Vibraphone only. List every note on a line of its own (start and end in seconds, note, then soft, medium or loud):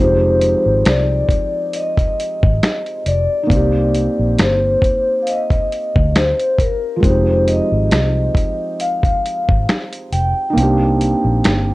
0.00 0.89 C5 medium
0.87 1.77 D5 medium
1.76 3.03 D#5 medium
3.08 4.35 D5 loud
4.41 5.24 C5 medium
5.23 5.28 F5 medium
5.30 6.12 D#5 loud
6.17 6.57 C5 medium
6.61 7.05 A#4 medium
7.04 7.49 C5 medium
7.49 8.76 D#5 loud
8.81 9.64 F5 loud
10.13 11.74 G5 loud